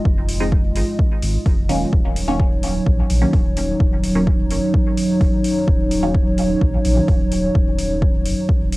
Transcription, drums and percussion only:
0.05 kick loud
0.29 open hi-hat medium
0.52 kick loud
0.75 open hi-hat medium
0.99 kick loud
1.22 open hi-hat medium
1.46 kick loud
1.46 open hi-hat soft
1.69 open hi-hat medium
1.93 kick loud
2.16 open hi-hat medium
2.40 kick loud
2.63 open hi-hat medium
2.86 kick loud
3.10 open hi-hat medium
3.33 kick loud
3.33 open hi-hat soft
3.57 open hi-hat medium
3.80 kick loud
4.04 open hi-hat medium
4.27 kick loud
4.50 open hi-hat medium
4.74 kick loud
4.97 open hi-hat medium
5.21 kick loud
5.21 open hi-hat soft
5.44 open hi-hat medium
5.68 kick loud
5.91 open hi-hat medium
6.15 kick loud
6.38 open hi-hat medium
6.61 kick loud
6.85 open hi-hat medium
7.08 kick loud
7.08 open hi-hat soft
7.32 open hi-hat medium
7.55 kick loud
7.79 open hi-hat medium
8.02 kick loud
8.26 open hi-hat medium
8.49 kick loud
8.72 open hi-hat medium

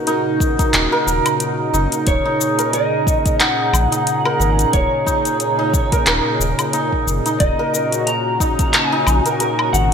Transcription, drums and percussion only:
0.07 closed hi-hat medium
0.07 cabasa soft
0.40 kick loud
0.40 cabasa medium
0.59 kick loud
0.59 closed hi-hat soft
0.59 cabasa soft
0.74 clap medium
0.74 closed hi-hat medium
0.74 cabasa soft
1.08 cabasa medium
1.26 closed hi-hat soft
1.26 cabasa soft
1.26 low woodblock medium
1.40 closed hi-hat medium
1.40 cabasa soft
1.74 cabasa medium
1.92 closed hi-hat soft
1.92 cabasa soft
2.07 kick loud
2.07 closed hi-hat medium
2.07 cabasa soft
2.41 cabasa medium
2.59 closed hi-hat soft
2.59 cabasa soft
2.73 closed hi-hat medium
2.73 cabasa soft
3.07 kick loud
3.07 cabasa medium
3.26 kick loud
3.26 closed hi-hat soft
3.26 cabasa soft
3.40 clap medium
3.40 closed hi-hat medium
3.40 cabasa soft
3.74 cabasa medium
3.74 low woodblock medium
3.92 closed hi-hat soft
3.92 cabasa soft
4.07 closed hi-hat medium
4.07 cabasa soft
4.25 low woodblock medium
4.41 cabasa medium
4.59 closed hi-hat soft
4.59 cabasa medium
4.73 kick loud
4.73 closed hi-hat medium
4.73 cabasa soft
5.07 kick medium
5.07 cabasa medium
5.25 closed hi-hat soft
5.25 cabasa soft
5.40 closed hi-hat medium
5.40 cabasa soft
5.74 kick loud
5.74 cabasa medium
5.92 kick loud
5.92 closed hi-hat soft
5.92 cabasa soft
6.06 clap medium
6.06 closed hi-hat medium
6.06 cabasa soft
6.41 cabasa medium
6.59 closed hi-hat soft
6.59 cabasa soft
6.59 low woodblock medium
6.73 closed hi-hat medium
6.73 cabasa soft
6.92 kick medium
7.08 cabasa medium
7.26 closed hi-hat soft
7.26 cabasa soft
7.40 kick loud
7.40 closed hi-hat medium
7.40 cabasa soft
7.74 cabasa medium
7.92 closed hi-hat soft
7.92 cabasa soft
8.07 closed hi-hat medium
8.07 cabasa soft
8.40 kick loud
8.40 cabasa medium
8.59 kick loud
8.59 closed hi-hat soft
8.59 cabasa soft
8.74 clap medium
8.74 closed hi-hat medium
8.74 cabasa soft
9.07 cabasa medium
9.07 low woodblock medium
9.26 closed hi-hat soft
9.26 cabasa soft
9.40 closed hi-hat medium
9.40 cabasa soft
9.59 low woodblock medium
9.74 cabasa medium

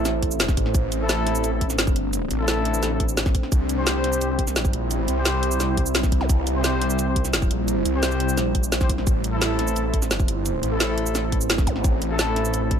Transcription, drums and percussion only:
0.05 snare soft
0.05 closed hi-hat medium
0.05 shaker soft
0.22 kick medium
0.22 closed hi-hat loud
0.31 shaker medium
0.40 snare loud
0.40 closed hi-hat medium
0.40 shaker soft
0.49 kick loud
0.49 snare medium
0.49 shaker soft
0.57 kick medium
0.57 closed hi-hat loud
0.66 snare soft
0.75 kick loud
0.75 closed hi-hat medium
0.75 shaker soft
0.92 closed hi-hat medium
0.92 shaker soft
1.09 snare loud
1.09 closed hi-hat medium
1.09 shaker soft
1.27 snare soft
1.27 closed hi-hat medium
1.35 shaker medium
1.44 closed hi-hat medium
1.44 shaker soft
1.61 kick medium
1.61 closed hi-hat medium
1.70 snare soft
1.70 shaker medium
1.79 snare loud
1.79 closed hi-hat medium
1.79 shaker soft
1.87 kick loud
1.87 shaker soft
1.96 closed hi-hat medium
2.13 closed hi-hat medium
2.13 shaker soft
2.31 closed hi-hat medium
2.31 shaker soft
2.48 snare loud
2.48 closed hi-hat medium
2.48 shaker soft
2.65 closed hi-hat medium
2.74 shaker medium
2.83 snare soft
2.83 closed hi-hat medium
2.83 shaker soft
3.00 kick medium
3.00 closed hi-hat medium
3.09 shaker medium
3.17 snare loud
3.17 closed hi-hat medium
3.17 shaker soft
3.26 kick loud
3.26 snare soft
3.26 shaker soft
3.35 kick medium
3.35 closed hi-hat medium
3.43 snare soft
3.52 kick loud
3.52 closed hi-hat medium
3.52 shaker soft
3.69 closed hi-hat medium
3.69 shaker soft
3.87 snare loud
3.87 closed hi-hat medium
3.87 shaker soft
4.04 snare soft
4.04 closed hi-hat medium
4.13 shaker medium
4.21 closed hi-hat medium
4.21 shaker soft
4.39 kick medium
4.39 closed hi-hat medium
4.47 snare soft
4.47 shaker medium
4.56 snare loud
4.56 closed hi-hat medium
4.56 shaker medium
4.65 kick loud
4.65 shaker soft
4.73 closed hi-hat medium
4.91 closed hi-hat medium
4.91 shaker medium
5.08 closed hi-hat medium
5.08 shaker soft
5.25 snare loud
5.25 closed hi-hat medium
5.25 shaker medium
5.43 closed hi-hat medium
5.51 shaker medium
5.60 snare soft
5.60 closed hi-hat medium
5.60 shaker medium
5.77 kick medium
5.77 closed hi-hat medium
5.86 shaker medium
5.95 snare loud
5.95 closed hi-hat medium
5.95 shaker medium
6.03 kick loud
6.03 snare soft
6.03 shaker soft
6.12 kick medium
6.12 closed hi-hat loud
6.21 snare soft
6.29 kick loud
6.29 closed hi-hat medium
6.29 shaker medium
6.47 closed hi-hat medium
6.47 shaker soft
6.64 snare loud
6.64 closed hi-hat medium
6.64 shaker medium
6.82 snare soft
6.82 closed hi-hat medium
6.90 shaker medium
6.99 closed hi-hat medium
6.99 shaker medium
7.16 kick medium
7.16 closed hi-hat loud
7.25 snare soft
7.25 shaker medium
7.33 snare loud
7.33 closed hi-hat medium
7.33 shaker medium
7.42 kick loud
7.42 shaker soft
7.51 closed hi-hat loud
7.68 closed hi-hat medium
7.68 shaker medium
7.85 closed hi-hat loud
7.85 shaker soft
8.03 snare loud
8.03 closed hi-hat medium
8.03 shaker medium
8.11 shaker soft
8.20 closed hi-hat loud
8.29 shaker medium
8.38 snare soft
8.38 closed hi-hat medium
8.38 shaker soft
8.55 kick medium
8.55 closed hi-hat loud
8.64 shaker medium
8.72 snare loud
8.72 closed hi-hat medium
8.72 shaker medium
8.81 kick loud
8.81 snare soft
8.81 shaker soft
8.90 kick medium
8.90 closed hi-hat loud
8.98 snare soft
9.07 kick loud
9.07 closed hi-hat medium
9.07 shaker soft
9.24 closed hi-hat medium
9.24 shaker soft
9.42 snare loud
9.42 closed hi-hat medium
9.42 shaker soft
9.59 snare soft
9.59 closed hi-hat loud
9.68 shaker medium
9.76 closed hi-hat medium
9.76 shaker soft
9.94 kick medium
9.94 closed hi-hat loud
10.02 snare soft
10.02 shaker medium
10.11 snare loud
10.11 closed hi-hat medium
10.11 shaker soft
10.20 kick loud
10.20 shaker soft
10.28 closed hi-hat loud
10.46 closed hi-hat medium
10.46 shaker soft
10.63 closed hi-hat medium
10.63 shaker soft
10.80 snare loud
10.80 closed hi-hat medium
10.80 shaker soft
10.98 closed hi-hat loud
11.06 shaker medium
11.15 snare soft
11.15 closed hi-hat medium
11.15 shaker soft
11.32 kick medium
11.32 closed hi-hat medium
11.41 shaker medium
11.50 snare loud
11.50 closed hi-hat medium
11.50 shaker soft
11.58 kick loud
11.58 snare medium
11.58 shaker soft
11.67 kick medium
11.67 closed hi-hat loud
11.76 snare soft
11.84 kick loud
11.84 closed hi-hat medium
11.84 shaker soft
12.02 closed hi-hat medium
12.02 shaker soft
12.19 snare loud
12.19 closed hi-hat medium
12.19 shaker soft
12.36 snare soft
12.36 closed hi-hat medium
12.45 shaker medium
12.54 closed hi-hat medium
12.54 shaker soft
12.71 kick medium
12.71 closed hi-hat medium

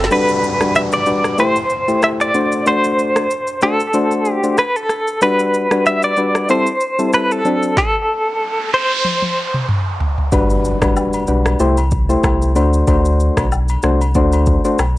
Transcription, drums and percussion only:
0.04 snare loud
0.11 shaker medium
0.29 shaker medium
0.44 shaker soft
0.61 cross-stick loud
0.61 shaker soft
0.75 shaker medium
0.92 shaker medium
1.06 shaker soft
1.24 cross-stick medium
1.24 shaker soft
1.38 shaker medium
1.56 shaker medium
1.70 shaker soft
1.88 shaker medium
2.02 cross-stick medium
2.02 shaker medium
2.21 shaker soft
2.34 shaker medium
2.52 shaker soft
2.66 shaker medium
2.84 shaker soft
2.99 shaker soft
3.16 cross-stick loud
3.16 shaker soft
3.31 shaker medium
3.47 shaker soft
3.61 cross-stick medium
3.61 shaker soft
3.80 shaker soft
3.94 shaker medium
4.11 shaker medium
4.25 shaker soft
4.44 shaker medium
4.58 cross-stick medium
4.58 shaker medium
4.76 shaker soft
4.89 cross-stick medium
4.89 shaker medium
5.07 shaker soft
5.21 shaker medium
5.39 shaker soft
5.54 shaker soft
5.71 cross-stick loud
5.71 shaker soft
5.86 shaker medium
6.03 shaker medium
6.17 shaker soft
6.35 cross-stick loud
6.35 shaker soft
6.49 shaker medium
6.67 shaker medium
6.81 shaker soft
6.99 shaker medium
7.13 cross-stick medium
7.13 shaker medium
7.31 shaker soft
7.45 shaker medium
7.63 shaker soft
7.77 kick loud
7.77 snare medium
9.05 high tom medium
9.22 high tom medium
9.54 mid tom medium
9.69 mid tom medium
10.00 floor tom medium
10.18 floor tom medium
10.32 kick loud
10.32 high agogo medium
10.32 shaker medium
10.50 shaker soft
10.65 shaker medium
10.82 kick medium
10.82 cross-stick loud
10.82 high agogo medium
10.82 shaker medium
10.97 low woodblock medium
10.97 shaker medium
11.13 high agogo medium
11.13 shaker medium
11.27 shaker soft
11.46 cross-stick loud
11.46 high agogo medium
11.46 shaker soft
11.60 shaker medium
11.77 high agogo medium
11.77 shaker medium
11.91 kick medium
11.91 shaker soft
12.10 shaker medium
12.24 kick medium
12.24 cross-stick loud
12.24 high agogo medium
12.24 low woodblock medium
12.24 shaker medium
12.42 shaker medium
12.56 high agogo medium
12.56 shaker medium
12.73 shaker soft
12.87 kick loud
12.87 high agogo medium
12.87 shaker medium
13.05 shaker medium
13.20 shaker medium
13.37 kick medium
13.37 cross-stick loud
13.37 high agogo medium
13.37 shaker medium
13.52 low woodblock medium
13.52 shaker medium
13.68 high agogo medium
13.68 shaker medium
13.83 cross-stick medium
13.83 shaker soft
14.01 high agogo medium
14.01 shaker soft
14.15 kick loud
14.15 shaker medium
14.32 high agogo medium
14.32 shaker medium
14.46 kick medium
14.46 shaker medium
14.65 shaker medium
14.79 cross-stick medium
14.79 high agogo medium
14.79 low woodblock medium
14.79 shaker medium

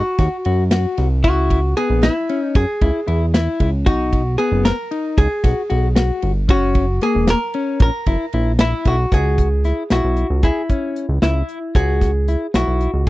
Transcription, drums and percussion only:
0.18 kick medium
0.18 snare soft
0.18 ride medium
0.45 ride medium
0.71 snare loud
0.71 ride medium
0.98 snare soft
0.98 ride medium
1.24 kick loud
1.24 ride medium
1.50 kick medium
1.50 ride medium
1.77 ride medium
2.03 snare loud
2.03 ride medium
2.29 ride medium
2.55 kick loud
2.55 ride medium
2.81 kick medium
2.81 ride medium
3.08 ride medium
3.34 snare loud
3.34 ride medium
3.60 kick medium
3.60 ride medium
3.86 kick loud
3.86 ride medium
4.13 kick medium
4.13 ride medium
4.39 ride medium
4.65 snare loud
4.65 ride medium
4.91 ride medium
5.18 kick loud
5.18 ride medium
5.44 kick medium
5.44 snare soft
5.44 ride medium
5.70 ride medium
5.96 snare loud
5.96 ride medium
6.22 ride medium
6.49 kick loud
6.49 ride medium
6.75 kick medium
6.75 ride medium
7.01 snare soft
7.01 ride medium
7.27 snare loud
7.27 ride medium
7.54 ride medium
7.80 kick loud
7.80 ride medium
8.06 kick medium
8.06 ride medium
8.33 ride medium
8.59 snare loud
8.59 ride medium
8.85 kick medium
8.85 ride medium
9.12 kick medium
9.12 closed hi-hat medium
9.38 kick medium
9.38 closed hi-hat medium
9.64 snare soft
9.64 closed hi-hat medium
9.90 snare loud
9.90 closed hi-hat medium
10.17 closed hi-hat medium
10.43 kick loud
10.43 closed hi-hat medium
10.69 kick medium
10.69 closed hi-hat medium
10.96 closed hi-hat medium
11.22 snare medium
11.22 closed hi-hat medium
11.49 closed hi-hat soft
11.75 kick medium
11.75 closed hi-hat medium
12.01 kick medium
12.01 snare soft
12.01 closed hi-hat medium
12.28 closed hi-hat medium
12.54 snare loud
12.54 closed hi-hat medium
12.81 closed hi-hat medium

